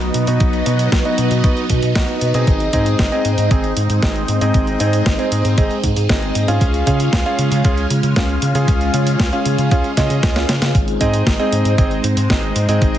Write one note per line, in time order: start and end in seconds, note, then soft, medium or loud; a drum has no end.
0.00 0.11 B1 medium
0.00 2.43 F#3 medium
0.00 0.24 B3 medium
0.00 2.43 B3 medium
0.00 0.24 D#4 medium
0.00 6.57 D#4 medium
0.00 0.24 F#4 medium
0.00 0.24 D#5 medium
0.00 closed hi-hat soft
0.14 0.26 B2 medium
0.14 closed hi-hat medium
0.27 0.39 B2 loud
0.27 0.63 B3 medium
0.27 0.63 D#4 medium
0.27 0.63 F#4 medium
0.27 0.63 D#5 loud
0.27 closed hi-hat soft
0.40 0.63 B1 loud
0.40 kick loud
0.40 closed hi-hat soft
0.53 closed hi-hat soft
0.66 0.88 B2 loud
0.66 1.02 B3 medium
0.66 1.02 D#4 medium
0.66 1.02 F#4 medium
0.66 1.02 D#5 medium
0.66 closed hi-hat medium
0.79 closed hi-hat soft
0.92 1.03 B1 loud
0.92 kick loud
0.92 snare loud
0.92 closed hi-hat medium
1.05 1.41 B3 medium
1.05 1.41 D#4 medium
1.05 1.41 F#4 medium
1.05 1.41 D#5 medium
1.05 closed hi-hat soft
1.18 1.29 B2 medium
1.18 closed hi-hat medium
1.31 1.42 B2 medium
1.31 closed hi-hat soft
1.44 1.55 B1 medium
1.44 1.63 B3 medium
1.44 1.63 D#4 medium
1.44 1.63 F#4 medium
1.44 1.63 D#5 medium
1.44 kick loud
1.44 closed hi-hat soft
1.57 closed hi-hat soft
1.70 1.81 B2 loud
1.70 kick medium
1.70 closed hi-hat medium
1.83 1.94 B2 medium
1.83 closed hi-hat soft
1.95 2.07 B1 medium
1.95 2.31 B3 medium
1.95 2.31 D#4 medium
1.95 2.31 F#4 medium
1.95 2.31 D#5 medium
1.95 kick loud
1.95 snare loud
1.95 closed hi-hat soft
2.08 closed hi-hat soft
2.21 2.33 B2 medium
2.21 closed hi-hat medium
2.34 2.45 B2 medium
2.34 2.70 C4 medium
2.34 2.70 D#4 medium
2.34 2.70 G#4 medium
2.34 2.70 D#5 loud
2.34 closed hi-hat soft
2.47 2.69 G#1 loud
2.47 12.98 G#3 medium
2.47 6.57 C4 medium
2.47 kick loud
2.47 closed hi-hat soft
2.60 closed hi-hat soft
2.73 2.95 G#2 loud
2.73 3.09 C4 medium
2.73 3.09 D#4 medium
2.73 3.09 G#4 medium
2.73 3.09 D#5 medium
2.73 kick medium
2.73 closed hi-hat medium
2.86 closed hi-hat soft
2.99 3.10 G#1 loud
2.99 kick loud
2.99 snare loud
2.99 closed hi-hat soft
3.12 3.48 C4 medium
3.12 3.48 D#4 medium
3.12 3.48 G#4 medium
3.12 3.48 D#5 loud
3.12 closed hi-hat soft
3.25 3.36 G#2 medium
3.25 closed hi-hat medium
3.38 3.49 G#2 medium
3.38 closed hi-hat soft
3.51 3.73 G#1 medium
3.51 3.70 C4 medium
3.51 3.70 D#4 medium
3.51 3.70 G#4 medium
3.51 3.70 D#5 medium
3.51 kick loud
3.51 closed hi-hat soft
3.64 closed hi-hat soft
3.77 3.88 G#2 medium
3.77 closed hi-hat medium
3.90 4.01 G#2 medium
3.90 closed hi-hat soft
4.03 4.25 G#1 medium
4.03 4.38 C4 medium
4.03 4.38 D#4 medium
4.03 4.38 G#4 medium
4.03 4.38 D#5 medium
4.03 kick loud
4.03 snare loud
4.03 closed hi-hat soft
4.16 closed hi-hat soft
4.28 4.39 G#2 medium
4.28 closed hi-hat medium
4.41 4.52 G#2 loud
4.41 4.77 C4 medium
4.41 4.77 D#4 medium
4.41 4.77 G#4 medium
4.41 4.77 D#5 loud
4.41 closed hi-hat medium
4.54 4.76 G#1 loud
4.54 kick loud
4.54 closed hi-hat medium
4.67 closed hi-hat soft
4.80 5.02 G#2 loud
4.80 5.16 C4 medium
4.80 5.16 D#4 medium
4.80 5.16 G#4 medium
4.80 5.16 D#5 medium
4.80 closed hi-hat medium
4.93 closed hi-hat medium
5.06 5.17 G#1 loud
5.06 kick loud
5.06 snare loud
5.06 closed hi-hat medium
5.19 5.55 C4 medium
5.19 5.55 D#4 medium
5.19 5.55 G#4 medium
5.19 5.55 D#5 loud
5.19 closed hi-hat soft
5.32 5.43 G#2 medium
5.32 closed hi-hat medium
5.45 5.56 G#2 loud
5.45 closed hi-hat medium
5.58 5.69 G#1 medium
5.58 5.77 C4 medium
5.58 5.77 D#4 medium
5.58 5.77 G#4 medium
5.58 5.77 D#5 medium
5.58 kick loud
5.58 closed hi-hat medium
5.71 closed hi-hat soft
5.84 5.95 G#2 loud
5.84 kick medium
5.84 closed hi-hat medium
5.96 6.07 G#2 medium
5.96 closed hi-hat medium
6.09 6.32 G#1 medium
6.09 6.45 C4 medium
6.09 6.45 D#4 medium
6.09 6.45 G#4 medium
6.09 6.45 D#5 medium
6.09 kick loud
6.09 snare loud
6.09 closed hi-hat medium
6.22 closed hi-hat soft
6.35 6.46 G#2 medium
6.35 closed hi-hat medium
6.48 6.59 G#2 loud
6.48 6.84 C#4 medium
6.48 6.84 F4 medium
6.48 6.84 G#4 medium
6.48 6.84 F5 loud
6.48 closed hi-hat medium
6.61 6.83 C#2 loud
6.61 10.71 C#4 medium
6.61 10.71 F4 medium
6.61 kick loud
6.61 closed hi-hat medium
6.74 closed hi-hat soft
6.87 7.09 C#3 loud
6.87 7.23 C#4 medium
6.87 7.23 F4 medium
6.87 7.23 G#4 medium
6.87 7.23 F5 loud
6.87 kick medium
6.87 closed hi-hat medium
7.00 closed hi-hat medium
7.13 7.24 C#2 loud
7.13 kick loud
7.13 snare loud
7.13 closed hi-hat medium
7.26 7.62 C#4 medium
7.26 7.62 F4 medium
7.26 7.62 G#4 medium
7.26 7.62 F5 loud
7.26 closed hi-hat soft
7.39 7.50 C#3 medium
7.39 closed hi-hat medium
7.52 7.63 C#3 medium
7.52 closed hi-hat medium
7.65 7.87 C#2 medium
7.65 7.84 C#4 medium
7.65 7.84 F4 medium
7.65 7.84 G#4 medium
7.65 7.84 F5 medium
7.65 kick loud
7.65 closed hi-hat medium
7.77 closed hi-hat soft
7.90 8.01 C#3 medium
7.90 closed hi-hat medium
8.03 8.14 C#3 medium
8.03 closed hi-hat medium
8.16 8.38 C#2 medium
8.16 8.52 C#4 medium
8.16 8.52 F4 medium
8.16 8.52 G#4 medium
8.16 8.52 F5 medium
8.16 kick loud
8.16 snare loud
8.16 closed hi-hat medium
8.29 closed hi-hat soft
8.42 8.53 C#3 medium
8.42 closed hi-hat loud
8.55 8.66 C#3 medium
8.55 8.91 C#4 medium
8.55 8.91 F4 medium
8.55 8.91 G#4 medium
8.55 8.91 F5 loud
8.55 closed hi-hat medium
8.68 8.90 C#2 loud
8.68 kick loud
8.68 closed hi-hat medium
8.81 closed hi-hat soft
8.94 9.16 C#3 loud
8.94 9.30 C#4 medium
8.94 9.30 F4 medium
8.94 9.30 G#4 medium
8.94 9.30 F5 medium
8.94 closed hi-hat loud
9.07 closed hi-hat medium
9.20 9.31 C#2 loud
9.20 kick loud
9.20 snare loud
9.20 closed hi-hat medium
9.33 9.68 C#4 medium
9.33 9.68 F4 medium
9.33 9.68 G#4 medium
9.33 9.68 F5 loud
9.33 closed hi-hat soft
9.46 9.57 C#3 medium
9.46 closed hi-hat loud
9.58 9.70 C#3 medium
9.58 closed hi-hat medium
9.71 9.82 C#2 medium
9.71 9.91 C#4 medium
9.71 9.91 F4 medium
9.71 9.91 G#4 medium
9.71 9.91 F5 medium
9.71 kick loud
9.71 closed hi-hat medium
9.84 closed hi-hat soft
9.97 10.08 C#3 medium
9.97 10.33 C#4 medium
9.97 10.33 F4 medium
9.97 10.33 G#4 medium
9.97 10.33 D#5 loud
9.97 kick medium
9.97 snare medium
9.97 closed hi-hat medium
10.10 10.21 C#3 medium
10.10 closed hi-hat medium
10.23 10.45 C#2 medium
10.23 kick loud
10.23 snare medium
10.23 closed hi-hat medium
10.36 10.73 C#4 medium
10.36 10.73 F4 medium
10.36 10.73 G#4 medium
10.36 10.73 F5 medium
10.36 snare medium
10.36 closed hi-hat soft
10.49 10.60 C#3 medium
10.49 snare medium
10.49 closed hi-hat loud
10.62 10.73 C#3 medium
10.62 snare medium
10.62 closed hi-hat medium
10.75 10.97 G#1 loud
10.75 12.98 C4 medium
10.75 12.98 D#4 medium
10.75 kick loud
10.75 closed hi-hat medium
10.88 closed hi-hat soft
11.01 11.23 G#2 loud
11.01 11.36 C4 medium
11.01 11.36 D#4 medium
11.01 11.36 G#4 medium
11.01 11.36 D#5 medium
11.01 kick medium
11.01 closed hi-hat loud
11.14 closed hi-hat medium
11.27 11.38 G#1 loud
11.27 kick loud
11.27 snare loud
11.27 closed hi-hat medium
11.39 11.75 C4 medium
11.39 11.75 D#4 medium
11.39 11.75 G#4 medium
11.39 11.75 D#5 loud
11.39 closed hi-hat soft
11.52 11.63 G#2 medium
11.52 closed hi-hat loud
11.65 11.76 G#2 loud
11.65 closed hi-hat medium
11.78 12.00 G#1 medium
11.78 11.98 C4 medium
11.78 11.98 D#4 medium
11.78 11.98 G#4 medium
11.78 11.98 D#5 medium
11.78 kick loud
11.78 closed hi-hat medium
11.91 closed hi-hat soft
12.04 12.15 G#2 medium
12.04 closed hi-hat loud
12.17 12.28 G#2 medium
12.17 closed hi-hat medium
12.30 12.52 G#1 medium
12.30 12.66 C4 medium
12.30 12.66 D#4 medium
12.30 12.66 G#4 medium
12.30 12.66 D#5 medium
12.30 kick loud
12.30 snare loud
12.30 closed hi-hat medium
12.43 closed hi-hat soft
12.56 12.67 G#2 medium
12.56 closed hi-hat loud
12.69 12.80 G#2 loud
12.69 12.98 C4 medium
12.69 12.98 D#4 medium
12.69 12.98 G#4 medium
12.69 12.98 D#5 loud
12.69 closed hi-hat medium
12.82 12.98 G#1 loud
12.82 kick loud
12.82 closed hi-hat medium
12.95 closed hi-hat soft